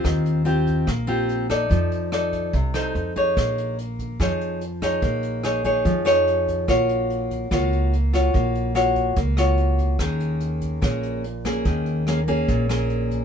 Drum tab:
HH |xxxxxxxx|xxxxxxxx|xxxxxxxx|xxxxxxxx|
SD |r---r--r|--r--r--|r---r--r|--r--r--|
BD |o--oo--o|o--oo--o|o--oo--o|o--oo--o|

HH |xxxxxxxx|xxxxxxxx|xxxxxxxx|xxxxxxxx|
SD |r---r--r|--r--r--|r---r--r|--r--r--|
BD |o--oo--o|o--oo--o|o--oo--o|o--oo--o|